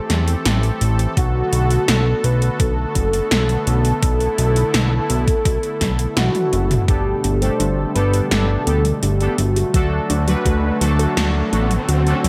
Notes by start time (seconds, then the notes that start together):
Already playing: E3 A3 C4 G4 A4
0.10 E2, snare, closed hi-hat
0.28 closed hi-hat
0.45 A1, snare, closed hi-hat
0.63 closed hi-hat
0.81 A1, closed hi-hat
0.99 closed hi-hat
1.17 B1 D3 A3 B3 F#4, kick, closed hi-hat
1.53 B1, closed hi-hat
1.70 closed hi-hat
1.88 B1 A4, snare, closed hi-hat
2.24 B1 B4, closed hi-hat
2.42 closed hi-hat
2.60 B1 A4, kick, closed hi-hat
2.95 F#1, kick, closed hi-hat
3.13 closed hi-hat
3.31 B1, snare, closed hi-hat
3.49 closed hi-hat
3.67 B1, closed hi-hat
3.85 closed hi-hat
4.02 B1 E4, kick, closed hi-hat
4.20 closed hi-hat
4.38 B1, closed hi-hat
4.56 closed hi-hat
4.74 B1, snare, closed hi-hat
5.10 B1, closed hi-hat
5.28 kick, closed hi-hat
5.45 B1, kick, closed hi-hat
5.63 closed hi-hat
5.81 B1, kick, snare, closed hi-hat
5.99 closed hi-hat
6.17 B1 F#4, snare, closed hi-hat, high tom
6.35 closed hi-hat, high tom
6.53 F#1, closed hi-hat
6.71 closed hi-hat, mid tom
6.88 G1 B2 D3 G3 A3 B3 D4 G4 A4, kick, closed hi-hat, riser
7.24 G1 B3, closed hi-hat
7.41 G3 A3 D4 G4 A4 C5, closed hi-hat
7.60 G1 D4, closed hi-hat
7.95 G1 G3 B3 D4 G4 A4 B4, closed hi-hat
8.13 G4, closed hi-hat
8.31 G1 G3 B3 D4 G4 A4, snare, closed hi-hat
8.67 D2 B3 D4 G4 A4, closed hi-hat
8.85 G3, closed hi-hat
9.03 G1 D4 G4, closed hi-hat
9.20 B3 D4 G4 A4, closed hi-hat
9.38 G1 G3 F#4, closed hi-hat
9.56 G4, closed hi-hat
9.74 D2 D3 F#3 A3 D4 F#4 A4, kick, closed hi-hat
10.10 D2 D4, closed hi-hat
10.28 F#3 A3 D4 F#4 B4, closed hi-hat
10.45 D2 F#4, kick, closed hi-hat
10.81 D2 F#3 A3 D4 F#4 A4, closed hi-hat
10.99 A4, closed hi-hat
11.17 D2 F#3 A3 D4 F#4 A4, snare, closed hi-hat
11.52 A1 A3 D4 F#4 A4, closed hi-hat
11.71 F#3, closed hi-hat
11.88 D2 F#4, closed hi-hat
12.06 A3 D4 F#4 A4, closed hi-hat
12.24 D2 F#3, closed hi-hat